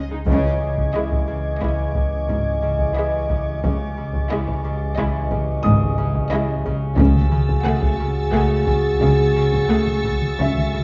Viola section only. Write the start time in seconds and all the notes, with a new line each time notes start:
0.10 G#3
0.95 G#3
1.62 G#3
2.97 G#3
4.32 G#3
4.99 G#3
6.32 G#3
7.66 A3
8.33 A3
9.70 A3